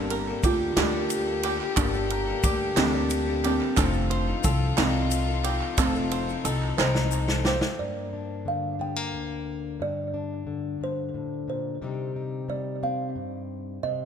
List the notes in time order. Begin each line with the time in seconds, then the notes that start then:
Already playing: G1 G2 G3 A#3 D4 G4 A4 D5
0.10 A#4, ride
0.27 G3 A#3 D4 A4
0.43 D2 G3 A#3 D4 F4 G4, kick, ride, shaker
0.47 A4
0.76 D2 G2 D3 G3 A#3 D4 G4 A4 D5, snare, clap, ride
0.93 G3 A#3 D4 A4
1.10 ride, shaker
1.27 G3 A#3 D4 A4
1.43 G3 A#3 D4 G4 A4, clap, ride
1.61 clap
1.76 G1 G2 D3 G3 A#3 D4 A4 D5, kick, clap, ride, shaker
1.93 G3 A#3 D4 A4, shaker
2.10 A#4, ride
2.27 G3 A#3 D4 A4
2.43 D2 G3 A#3 D4 G4 A4, kick, ride, shaker
2.76 D2 G2 D3 G3 A#3 C4 D4 A4 D5, snare, clap, ride
2.94 G3 A#3 D4 A4
3.10 ride, shaker
3.27 G3 A#3 D4 A4
3.44 G3 A#3 C4 D4 G4 A4, clap, ride
3.61 clap
3.77 F1 F2 D#3 F3 C4 D4 D#4 F4 A4 C5, kick, clap, ride, shaker
3.93 C4 A4, shaker
4.10 C5, ride
4.27 C4 D#4 A4
4.43 C2 F3 C4 A4, kick, ride, shaker
4.77 C2 F3 C4 D#4 A4 D5, snare, clap, ride
4.94 C4 D#4 A4
5.11 ride, shaker
5.28 C4 D#4 A4
5.44 F3 C4 D#4 G4, clap, ride
5.48 A4
5.61 clap
5.77 F1 F2 F3 C4 D#4 A4 C5, kick, clap, ride, shaker
5.81 A4
5.95 C4 D#4 A4, shaker
6.11 C5, ride, shaker
6.28 C4 D#4 A4, shaker
6.45 C2 F3 C4 D#4 A4, ride, shaker
6.63 clap
6.77 C2 F3 C4 D#4 A4 C5, snare, clap
6.95 C4 D#4 A4, snare
7.11 clap, shaker
7.27 C4 D#4 A4, snare
7.44 F3 C4 D#4 F4 G4 A4 C5, snare
7.61 snare, shaker
7.79 G2 A#3 D5
8.13 D4
8.45 D3 F5
8.79 G3 G5
8.96 A#3
9.12 D2
9.80 G2 D5
10.14 D4
10.47 D3
10.81 G2 C5
11.14 A2
11.48 A#2 C5
11.82 C3 G3 C4 D#4 G4
12.16 D#4
12.48 G3 D5
12.83 C4 F5
13.15 G2
13.83 C3 C4 D#5